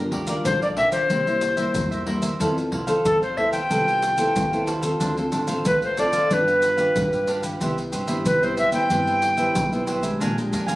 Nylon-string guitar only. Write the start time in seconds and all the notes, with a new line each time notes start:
Already playing: G3 D4 F4 A#4
0.27 D4 F4 A#4
0.45 D3
0.77 D4 F4 A#4
1.10 C3 G3 A#3 E4
1.27 G3 A#3 E4
1.57 G3 A#3 E4
1.75 G2
2.06 G3 A#3 E4
2.40 F3 B3 E4 A4
2.88 A4
3.06 C3
3.37 B3 E4 A4
3.71 F3 B3 E4 A4
4.18 B3 E4 A4
4.36 C3
4.53 B3 E4 A4
4.83 C4 F4 A4
5.01 D3
5.18 C4 F4 A4
5.48 C4 F4 A4
5.66 A2
5.98 C4 F4 A4
6.31 G3 D4 F4 B4
6.48 D4 F4 B4
6.78 D4 F4 B4
6.96 D3
7.28 D4 F4 B4
7.61 C3 B3 E4 G4
8.08 B3 E4 G4
8.26 G3
8.43 B3 E4 G4
8.74 B3 E4 G4
8.91 C3 B3 E4 G4
9.38 B3 E4 G4
9.56 G3
9.73 B3 E4 G4
10.03 G#3 D4 G4
10.21 A#2
10.38 G#3 D4 G4
10.68 G#3 D4